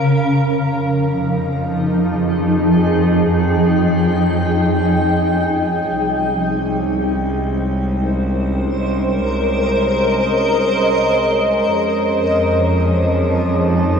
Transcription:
0.00 1.36 A#4 medium
0.00 1.25 F5 medium
0.04 5.83 F2 medium
0.04 5.88 F3 medium
0.04 14.00 G#3 medium
0.04 14.00 C#4 medium
0.22 8.17 D#4 medium
1.13 5.89 G#4 medium
2.17 7.20 G5 medium
5.88 11.64 C2 medium
6.75 14.00 C5 medium
7.59 13.23 A#4 medium
8.43 12.89 D#5 medium
11.67 14.00 F2 medium
11.67 14.00 F3 medium
12.40 14.00 D#4 medium
13.70 14.00 G#4 medium

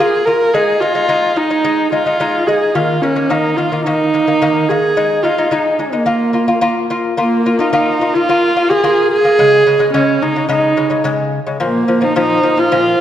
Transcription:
0.00 0.21 A#3 medium
0.00 0.21 F4 medium
0.00 0.27 G#4 medium
0.25 0.49 A#3 medium
0.25 0.49 F4 medium
0.25 0.55 A#4 medium
0.54 0.76 G#3 medium
0.54 0.76 D#4 medium
0.54 0.82 G#4 medium
0.80 0.92 G#3 medium
0.80 0.93 D#4 medium
0.80 1.38 F4 medium
0.95 1.06 G#3 medium
0.95 1.06 D#4 medium
1.09 1.31 G#3 medium
1.09 1.31 D#4 medium
1.36 1.47 G#3 medium
1.36 1.92 D#4 medium
1.36 1.48 D#4 medium
1.50 1.62 G#3 medium
1.50 1.62 D#4 medium
1.64 1.87 G#3 medium
1.64 1.87 D#4 medium
1.92 2.03 G#3 medium
1.92 2.03 D#4 medium
1.92 2.48 F4 medium
2.06 2.17 G#3 medium
2.06 2.17 D#4 medium
2.20 2.42 G#3 medium
2.20 2.42 D#4 loud
2.47 2.70 G#3 medium
2.47 2.70 D#4 medium
2.47 2.76 G#4 medium
2.74 2.97 D#3 medium
2.74 2.97 A#3 medium
2.74 3.03 F4 medium
3.02 3.14 D#3 medium
3.02 3.14 A#3 medium
3.02 3.31 C#4 medium
3.16 3.27 D#3 medium
3.16 3.28 A#3 medium
3.30 3.52 D#3 medium
3.30 3.53 A#3 medium
3.30 3.58 D#4 medium
3.56 3.69 D#3 medium
3.56 3.69 A#3 medium
3.56 3.85 F4 medium
3.72 3.83 D#3 medium
3.72 3.83 A#3 medium
3.85 4.08 D#3 medium
3.85 4.08 A#3 medium
3.85 4.70 D#4 medium
4.14 4.25 D#3 medium
4.14 4.25 A#3 medium
4.27 4.39 D#3 medium
4.27 4.39 A#3 medium
4.42 4.64 D#3 medium
4.42 4.64 A#3 loud
4.69 4.92 D#3 medium
4.69 4.92 A#3 medium
4.69 5.24 G#4 medium
4.97 5.19 G#3 medium
4.97 5.19 D#4 medium
5.23 5.35 G#3 medium
5.23 5.36 D#4 medium
5.23 5.53 F4 medium
5.38 5.49 G#3 medium
5.38 5.50 D#4 medium
5.51 5.74 G#3 medium
5.51 5.81 D#4 medium
5.51 5.74 D#4 loud
5.79 5.91 G#3 medium
5.79 6.91 A#3 medium
5.79 5.91 D#4 medium
5.93 6.04 G#3 medium
5.93 6.04 D#4 medium
6.06 6.29 A#3 medium
6.06 6.29 F4 medium
6.33 6.45 A#3 medium
6.33 6.46 F4 medium
6.48 6.60 A#3 medium
6.48 6.60 F4 medium
6.61 6.84 A#3 loud
6.61 6.85 F4 loud
6.90 7.13 A#3 medium
6.90 7.13 F4 medium
7.17 7.40 A#3 medium
7.17 7.60 A#3 medium
7.17 7.40 F4 medium
7.46 7.57 A#3 medium
7.46 7.57 F4 medium
7.59 7.71 A#3 medium
7.59 7.72 D#4 medium
7.59 7.71 F4 medium
7.73 7.96 A#3 medium
7.73 8.16 D#4 medium
7.73 7.96 F4 loud
8.01 8.12 A#3 medium
8.01 8.13 F4 medium
8.14 8.26 A#3 medium
8.14 8.71 F4 loud
8.14 8.27 F4 medium
8.29 8.51 A#3 medium
8.29 8.52 F4 medium
8.56 8.68 A#3 medium
8.56 8.68 F4 medium
8.70 8.82 A#3 medium
8.70 8.82 F4 medium
8.70 9.11 G#4 loud
8.84 9.17 A#3 medium
8.84 9.18 F4 loud
9.12 9.91 G#4 loud
9.24 9.36 A#3 medium
9.24 9.37 F4 medium
9.39 9.61 C#3 medium
9.39 9.62 G#3 loud
9.66 9.78 C#3 medium
9.66 9.78 G#3 medium
9.79 9.91 C#3 medium
9.79 9.92 G#3 medium
9.93 10.17 C#3 loud
9.93 10.17 G#3 loud
9.93 10.23 C#4 medium
10.22 10.34 C#3 medium
10.22 10.34 G#3 medium
10.22 10.50 D#4 medium
10.36 10.47 C#3 medium
10.36 10.48 G#3 medium
10.49 10.72 C#3 medium
10.49 10.72 G#3 loud
10.49 11.02 D#4 medium
10.77 10.89 C#3 medium
10.77 10.89 G#3 medium
10.90 11.02 C#3 medium
10.90 11.02 G#3 medium
11.04 11.38 C#3 loud
11.04 11.39 G#3 loud
11.47 11.58 C#3 medium
11.47 11.58 G#3 medium
11.60 11.83 A#2 medium
11.60 11.83 F3 medium
11.64 12.05 A#3 medium
11.88 12.00 A#2 medium
11.88 12.00 F3 medium
12.01 12.13 A#2 medium
12.01 12.13 F3 medium
12.01 12.17 D#4 medium
12.16 12.38 A#2 medium
12.16 12.39 F3 loud
12.16 12.60 D#4 medium
12.43 12.55 A#2 medium
12.43 12.55 F3 medium
12.57 12.69 A#2 medium
12.57 12.69 F3 medium
12.57 13.01 F4 loud
12.72 12.94 A#2 medium
12.72 12.94 F3 loud

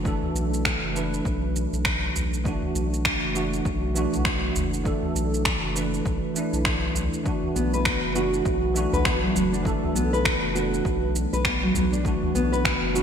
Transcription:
0.00 0.17 F#1 medium
0.00 0.04 E3 medium
0.00 0.92 E3 medium
0.00 0.05 A3 medium
0.00 0.06 D4 medium
0.00 2.47 F#4 medium
0.05 0.92 A3 medium
0.05 0.93 D4 medium
0.05 0.93 A4 loud
0.05 kick loud
0.05 shaker soft
0.23 udu medium
0.35 0.77 B1 medium
0.35 shaker medium
0.54 shaker soft
0.65 finger snap loud
0.65 kick medium
0.65 shaker soft
0.83 1.21 F#1 medium
0.93 2.41 E3 medium
0.93 2.42 A3 medium
0.93 2.42 D4 medium
0.93 shaker medium
0.97 2.43 B4 medium
1.14 shaker soft
1.25 1.67 B1 loud
1.25 kick loud
1.25 shaker soft
1.56 shaker medium
1.73 2.11 B1 medium
1.73 shaker soft
1.85 finger snap loud
1.85 kick loud
1.85 shaker soft
2.15 2.57 B1 medium
2.15 udu medium
2.15 shaker medium
2.34 shaker soft
2.44 3.31 E3 medium
2.44 3.32 A3 medium
2.44 3.33 D4 medium
2.44 3.33 F#4 medium
2.44 kick loud
2.44 shaker soft
2.62 udu medium
2.75 3.17 B1 medium
2.75 shaker medium
2.94 shaker soft
3.05 finger snap loud
3.05 kick loud
3.05 shaker soft
3.23 3.61 F#1 medium
3.34 3.92 E3 medium
3.34 3.92 A3 medium
3.34 3.92 D4 medium
3.34 3.93 F#4 medium
3.34 shaker medium
3.53 shaker soft
3.65 4.07 B1 loud
3.65 kick loud
3.65 shaker soft
3.94 4.82 E3 medium
3.94 4.82 A3 medium
3.94 4.83 D4 medium
3.94 4.84 F#4 medium
3.94 shaker medium
4.13 4.51 B1 medium
4.13 udu medium
4.13 shaker soft
4.25 finger snap medium
4.25 kick loud
4.25 shaker soft
4.56 4.97 F#1 medium
4.56 udu loud
4.56 shaker medium
4.74 shaker soft
4.84 5.71 E3 medium
4.84 5.72 A3 medium
4.84 5.73 D4 medium
4.84 5.73 A4 loud
4.84 kick loud
4.84 shaker soft
5.02 udu medium
5.15 5.57 B1 medium
5.15 shaker medium
5.34 shaker soft
5.45 finger snap loud
5.45 kick loud
5.45 shaker soft
5.63 6.01 F#1 medium
5.75 6.32 E3 medium
5.75 6.33 A3 medium
5.75 6.33 D4 medium
5.75 6.33 B4 medium
5.75 shaker medium
5.94 shaker soft
6.06 6.19 B1 medium
6.06 kick loud
6.06 shaker soft
6.34 7.22 E3 medium
6.34 7.22 A3 medium
6.34 7.23 D4 medium
6.34 7.24 E4 medium
6.34 shaker medium
6.53 6.91 B1 medium
6.53 shaker soft
6.65 finger snap medium
6.65 kick loud
6.65 shaker soft
6.95 7.09 B1 medium
6.95 udu loud
6.95 shaker medium
7.14 shaker soft
7.23 8.11 E3 medium
7.23 8.12 A3 medium
7.23 8.13 D4 medium
7.23 kick loud
7.23 shaker soft
7.28 8.14 F#4 loud
7.43 udu medium
7.56 7.97 B1 medium
7.56 7.71 B3 loud
7.56 shaker medium
7.74 7.84 B4 loud
7.74 shaker soft
7.85 8.14 B3 medium
7.85 finger snap loud
7.85 kick medium
7.85 shaker soft
8.03 8.41 F#1 medium
8.14 8.72 E3 medium
8.14 8.72 A3 medium
8.14 8.72 D4 medium
8.14 8.74 F#4 medium
8.14 8.73 F#4 medium
8.14 shaker medium
8.34 shaker soft
8.45 8.87 B1 loud
8.45 kick loud
8.45 shaker soft
8.74 9.61 E3 medium
8.74 9.62 A3 medium
8.74 9.63 D4 medium
8.74 9.63 F#4 loud
8.74 shaker medium
8.93 9.31 B1 loud
8.93 9.04 B4 loud
8.93 udu medium
8.93 shaker soft
9.05 9.21 B3 medium
9.05 finger snap medium
9.05 kick loud
9.05 shaker soft
9.23 9.34 F#3 medium
9.35 9.77 F#1 medium
9.35 9.52 F#3 medium
9.35 udu medium
9.35 shaker medium
9.53 9.94 D4 loud
9.53 shaker soft
9.63 10.51 E3 loud
9.63 10.52 A3 medium
9.63 10.52 D4 medium
9.63 kick loud
9.63 shaker soft
9.67 10.53 A4 loud
9.84 udu medium
9.95 10.37 B1 medium
9.95 10.11 B3 loud
9.95 shaker medium
10.13 10.24 B4 medium
10.13 shaker soft
10.25 10.54 B3 medium
10.25 finger snap loud
10.25 kick medium
10.25 shaker soft
10.43 10.81 F#1 medium
10.53 12.01 E3 medium
10.53 12.02 A3 medium
10.53 12.03 D4 medium
10.53 11.14 F#4 medium
10.53 shaker medium
10.57 12.03 B4 medium
10.74 shaker soft
10.85 11.27 B1 loud
10.85 kick loud
10.85 shaker soft
11.16 shaker medium
11.33 11.71 B1 medium
11.33 11.44 B4 loud
11.33 shaker soft
11.45 11.61 B3 medium
11.45 finger snap medium
11.45 kick medium
11.45 shaker soft
11.63 11.75 F#3 medium
11.75 12.16 B1 medium
11.75 11.92 F#3 medium
11.75 udu medium
11.75 shaker medium
11.93 12.05 D4 loud
11.93 shaker soft
12.03 12.91 E3 medium
12.03 12.92 A3 medium
12.03 12.93 D4 medium
12.03 kick medium
12.03 shaker soft
12.08 12.93 F#4 loud
12.23 udu medium
12.34 12.76 B1 medium
12.34 12.51 B3 loud
12.34 shaker medium
12.52 12.64 B4 loud
12.52 shaker soft
12.65 finger snap loud
12.65 kick medium
12.65 shaker soft
12.82 13.03 F#1 medium
12.93 13.03 E3 medium
12.93 13.03 A3 medium
12.93 13.03 D4 medium
12.93 13.03 F#4 medium
12.93 shaker medium

